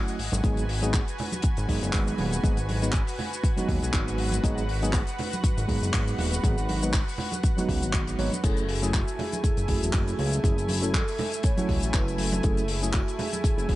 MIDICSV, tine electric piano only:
0, 0, Header, 1, 2, 480
1, 0, Start_track
1, 0, Tempo, 500000
1, 420, Time_signature, 4, 2, 24, 8
1, 13204, End_track
2, 0, Start_track
2, 0, Title_t, "Tine electric piano"
2, 0, Program_c, 0, 4
2, 0, Note_on_c, 0, 54, 90
2, 0, Note_on_c, 0, 57, 83
2, 0, Note_on_c, 0, 61, 79
2, 0, Note_on_c, 0, 64, 81
2, 0, Note_on_c, 0, 66, 93
2, 162, Note_off_c, 0, 54, 0
2, 165, Note_off_c, 0, 57, 0
2, 167, Note_off_c, 0, 61, 0
2, 169, Note_off_c, 0, 64, 0
2, 171, Note_off_c, 0, 66, 0
2, 415, Note_on_c, 0, 54, 89
2, 418, Note_on_c, 0, 56, 81
2, 419, Note_on_c, 0, 59, 80
2, 422, Note_on_c, 0, 63, 81
2, 423, Note_on_c, 0, 68, 98
2, 595, Note_off_c, 0, 54, 0
2, 597, Note_off_c, 0, 56, 0
2, 597, Note_off_c, 0, 59, 0
2, 598, Note_off_c, 0, 63, 0
2, 599, Note_off_c, 0, 68, 0
2, 786, Note_on_c, 0, 54, 94
2, 788, Note_on_c, 0, 56, 84
2, 791, Note_on_c, 0, 59, 86
2, 794, Note_on_c, 0, 63, 87
2, 796, Note_on_c, 0, 68, 107
2, 953, Note_off_c, 0, 54, 0
2, 953, Note_off_c, 0, 56, 0
2, 955, Note_off_c, 0, 59, 0
2, 957, Note_off_c, 0, 63, 0
2, 957, Note_off_c, 0, 68, 0
2, 1607, Note_on_c, 0, 54, 79
2, 1613, Note_on_c, 0, 56, 73
2, 1617, Note_on_c, 0, 59, 69
2, 1623, Note_on_c, 0, 63, 73
2, 1626, Note_on_c, 0, 68, 89
2, 2308, Note_off_c, 0, 54, 0
2, 2311, Note_off_c, 0, 56, 0
2, 2313, Note_off_c, 0, 59, 0
2, 2316, Note_off_c, 0, 63, 0
2, 2317, Note_off_c, 0, 68, 0
2, 2334, Note_on_c, 0, 54, 73
2, 2336, Note_on_c, 0, 56, 65
2, 2339, Note_on_c, 0, 59, 69
2, 2341, Note_on_c, 0, 63, 68
2, 2345, Note_on_c, 0, 68, 82
2, 2454, Note_off_c, 0, 54, 0
2, 2455, Note_off_c, 0, 56, 0
2, 2457, Note_off_c, 0, 59, 0
2, 2458, Note_off_c, 0, 63, 0
2, 2460, Note_off_c, 0, 68, 0
2, 2706, Note_on_c, 0, 54, 88
2, 2708, Note_on_c, 0, 56, 82
2, 2710, Note_on_c, 0, 59, 83
2, 2713, Note_on_c, 0, 63, 81
2, 2714, Note_on_c, 0, 71, 96
2, 2804, Note_off_c, 0, 54, 0
2, 2805, Note_off_c, 0, 56, 0
2, 2807, Note_off_c, 0, 59, 0
2, 2808, Note_off_c, 0, 63, 0
2, 2809, Note_off_c, 0, 71, 0
2, 3423, Note_on_c, 0, 54, 92
2, 3427, Note_on_c, 0, 56, 80
2, 3431, Note_on_c, 0, 59, 83
2, 3437, Note_on_c, 0, 63, 81
2, 3441, Note_on_c, 0, 66, 100
2, 4230, Note_off_c, 0, 54, 0
2, 4232, Note_off_c, 0, 56, 0
2, 4233, Note_off_c, 0, 59, 0
2, 4236, Note_off_c, 0, 63, 0
2, 4238, Note_off_c, 0, 66, 0
2, 4255, Note_on_c, 0, 54, 85
2, 4257, Note_on_c, 0, 56, 81
2, 4259, Note_on_c, 0, 59, 76
2, 4261, Note_on_c, 0, 63, 81
2, 4264, Note_on_c, 0, 68, 95
2, 4435, Note_off_c, 0, 54, 0
2, 4436, Note_off_c, 0, 56, 0
2, 4437, Note_off_c, 0, 59, 0
2, 4438, Note_off_c, 0, 63, 0
2, 4439, Note_off_c, 0, 68, 0
2, 4627, Note_on_c, 0, 54, 93
2, 4629, Note_on_c, 0, 56, 91
2, 4631, Note_on_c, 0, 59, 89
2, 4633, Note_on_c, 0, 63, 86
2, 4637, Note_on_c, 0, 68, 108
2, 4793, Note_off_c, 0, 54, 0
2, 4794, Note_off_c, 0, 56, 0
2, 4795, Note_off_c, 0, 59, 0
2, 4796, Note_off_c, 0, 63, 0
2, 4798, Note_off_c, 0, 68, 0
2, 5449, Note_on_c, 0, 54, 78
2, 5453, Note_on_c, 0, 56, 71
2, 5459, Note_on_c, 0, 59, 73
2, 5464, Note_on_c, 0, 63, 72
2, 5468, Note_on_c, 0, 68, 83
2, 6149, Note_off_c, 0, 54, 0
2, 6151, Note_off_c, 0, 56, 0
2, 6154, Note_off_c, 0, 59, 0
2, 6156, Note_off_c, 0, 63, 0
2, 6158, Note_off_c, 0, 68, 0
2, 6174, Note_on_c, 0, 54, 73
2, 6177, Note_on_c, 0, 56, 69
2, 6180, Note_on_c, 0, 59, 68
2, 6182, Note_on_c, 0, 63, 69
2, 6185, Note_on_c, 0, 68, 80
2, 6294, Note_off_c, 0, 54, 0
2, 6296, Note_off_c, 0, 56, 0
2, 6297, Note_off_c, 0, 59, 0
2, 6298, Note_off_c, 0, 63, 0
2, 6300, Note_off_c, 0, 68, 0
2, 6547, Note_on_c, 0, 54, 86
2, 6550, Note_on_c, 0, 56, 79
2, 6552, Note_on_c, 0, 59, 77
2, 6555, Note_on_c, 0, 63, 83
2, 6558, Note_on_c, 0, 71, 93
2, 6645, Note_off_c, 0, 54, 0
2, 6647, Note_off_c, 0, 56, 0
2, 6648, Note_off_c, 0, 59, 0
2, 6649, Note_off_c, 0, 63, 0
2, 6650, Note_off_c, 0, 71, 0
2, 7264, Note_on_c, 0, 54, 92
2, 7268, Note_on_c, 0, 56, 80
2, 7274, Note_on_c, 0, 59, 85
2, 7279, Note_on_c, 0, 63, 83
2, 7283, Note_on_c, 0, 66, 97
2, 7834, Note_off_c, 0, 54, 0
2, 7836, Note_off_c, 0, 56, 0
2, 7839, Note_off_c, 0, 59, 0
2, 7842, Note_off_c, 0, 63, 0
2, 7844, Note_off_c, 0, 66, 0
2, 7853, Note_on_c, 0, 54, 81
2, 7856, Note_on_c, 0, 56, 78
2, 7859, Note_on_c, 0, 59, 72
2, 7861, Note_on_c, 0, 63, 73
2, 7863, Note_on_c, 0, 73, 94
2, 7974, Note_off_c, 0, 54, 0
2, 7975, Note_off_c, 0, 56, 0
2, 7977, Note_off_c, 0, 59, 0
2, 7978, Note_off_c, 0, 63, 0
2, 7979, Note_off_c, 0, 73, 0
2, 8097, Note_on_c, 0, 54, 88
2, 8100, Note_on_c, 0, 57, 76
2, 8102, Note_on_c, 0, 61, 83
2, 8105, Note_on_c, 0, 64, 77
2, 8107, Note_on_c, 0, 68, 95
2, 8276, Note_off_c, 0, 54, 0
2, 8278, Note_off_c, 0, 57, 0
2, 8279, Note_off_c, 0, 61, 0
2, 8280, Note_off_c, 0, 64, 0
2, 8281, Note_off_c, 0, 68, 0
2, 8470, Note_on_c, 0, 54, 93
2, 8473, Note_on_c, 0, 57, 86
2, 8475, Note_on_c, 0, 61, 85
2, 8478, Note_on_c, 0, 64, 86
2, 8480, Note_on_c, 0, 68, 107
2, 8634, Note_off_c, 0, 54, 0
2, 8636, Note_off_c, 0, 57, 0
2, 8637, Note_off_c, 0, 61, 0
2, 8638, Note_off_c, 0, 64, 0
2, 8639, Note_off_c, 0, 68, 0
2, 9292, Note_on_c, 0, 54, 76
2, 9297, Note_on_c, 0, 57, 71
2, 9302, Note_on_c, 0, 61, 71
2, 9306, Note_on_c, 0, 64, 71
2, 9311, Note_on_c, 0, 68, 86
2, 9990, Note_off_c, 0, 54, 0
2, 9993, Note_off_c, 0, 57, 0
2, 9995, Note_off_c, 0, 61, 0
2, 9997, Note_off_c, 0, 64, 0
2, 10000, Note_off_c, 0, 68, 0
2, 10017, Note_on_c, 0, 54, 73
2, 10020, Note_on_c, 0, 57, 68
2, 10022, Note_on_c, 0, 61, 64
2, 10024, Note_on_c, 0, 64, 68
2, 10027, Note_on_c, 0, 68, 83
2, 10136, Note_off_c, 0, 54, 0
2, 10138, Note_off_c, 0, 57, 0
2, 10138, Note_off_c, 0, 61, 0
2, 10140, Note_off_c, 0, 64, 0
2, 10141, Note_off_c, 0, 68, 0
2, 10388, Note_on_c, 0, 54, 86
2, 10390, Note_on_c, 0, 57, 81
2, 10392, Note_on_c, 0, 61, 81
2, 10394, Note_on_c, 0, 64, 82
2, 10397, Note_on_c, 0, 69, 96
2, 10486, Note_off_c, 0, 54, 0
2, 10487, Note_off_c, 0, 57, 0
2, 10488, Note_off_c, 0, 61, 0
2, 10489, Note_off_c, 0, 64, 0
2, 10490, Note_off_c, 0, 69, 0
2, 11103, Note_on_c, 0, 54, 96
2, 11107, Note_on_c, 0, 57, 85
2, 11111, Note_on_c, 0, 61, 84
2, 11117, Note_on_c, 0, 64, 82
2, 11122, Note_on_c, 0, 66, 100
2, 11909, Note_off_c, 0, 54, 0
2, 11912, Note_off_c, 0, 57, 0
2, 11914, Note_off_c, 0, 61, 0
2, 11917, Note_off_c, 0, 64, 0
2, 11919, Note_off_c, 0, 66, 0
2, 11937, Note_on_c, 0, 54, 88
2, 11940, Note_on_c, 0, 57, 79
2, 11942, Note_on_c, 0, 61, 82
2, 11944, Note_on_c, 0, 64, 84
2, 11947, Note_on_c, 0, 68, 98
2, 12116, Note_off_c, 0, 54, 0
2, 12118, Note_off_c, 0, 57, 0
2, 12118, Note_off_c, 0, 61, 0
2, 12120, Note_off_c, 0, 64, 0
2, 12121, Note_off_c, 0, 68, 0
2, 12309, Note_on_c, 0, 54, 94
2, 12311, Note_on_c, 0, 57, 90
2, 12313, Note_on_c, 0, 61, 88
2, 12317, Note_on_c, 0, 64, 90
2, 12317, Note_on_c, 0, 68, 105
2, 12474, Note_off_c, 0, 54, 0
2, 12475, Note_off_c, 0, 57, 0
2, 12476, Note_off_c, 0, 61, 0
2, 12478, Note_off_c, 0, 64, 0
2, 12478, Note_off_c, 0, 68, 0
2, 13130, Note_on_c, 0, 54, 81
2, 13135, Note_on_c, 0, 57, 76
2, 13141, Note_on_c, 0, 61, 72
2, 13145, Note_on_c, 0, 64, 73
2, 13149, Note_on_c, 0, 68, 90
2, 13204, Note_off_c, 0, 54, 0
2, 13204, Note_off_c, 0, 57, 0
2, 13204, Note_off_c, 0, 61, 0
2, 13204, Note_off_c, 0, 64, 0
2, 13204, Note_off_c, 0, 68, 0
2, 13204, End_track
0, 0, End_of_file